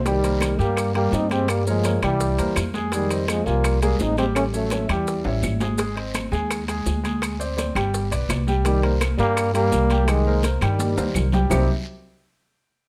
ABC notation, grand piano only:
X:1
M:4/4
L:1/8
Q:1/4=168
K:Cm
V:1 name="Grand piano"
[G,Gg] [B,Bc]2 [G,Gg]2 [G,Gg]2 [G,Gg]- | [G,Gg] [B,B_d] [B,Bd] [G,Gg]2 [B,Bc]2 [A,Aa] | [A,Aa] [Cce]2 [F,Fa]2 [A,Aa]2 [G,Gg]- | [G,Gg] [^C^c=e] [Cce] [G,Gg]2 [Cce]2 [A,Aa] |
[A,Aa] [Cce]2 [A,Aa]2 [A,Aa]2 [A,Aa]- | [A,Aa] [Ccd] [Ccd] [G,Gg]2 [=B,=Bd]2 [G,Gg] | [G,Gg] [B,Bc]2 [G,Gg]2 [G,Gg]2 [G,Gg]- | [G,Gg] [B,Bc] [B,Bc] [G,Gg]2 [B,Bc]2 [G,Gg] |
[C,G,B,CEG] z6 z |]